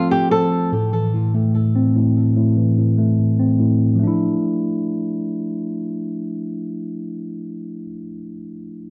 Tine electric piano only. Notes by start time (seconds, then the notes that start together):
Already playing: F3 A3 C4
0.11 F4
0.31 F3
0.72 A2
0.93 E3
1.14 A2
1.35 A3
1.55 A2
1.75 C4
1.96 A2
2.36 A2
2.58 E3
2.78 A2
2.99 A3
3.19 A2
3.40 C4
3.60 A2
3.95 F3
3.99 A3
4.03 D4 E4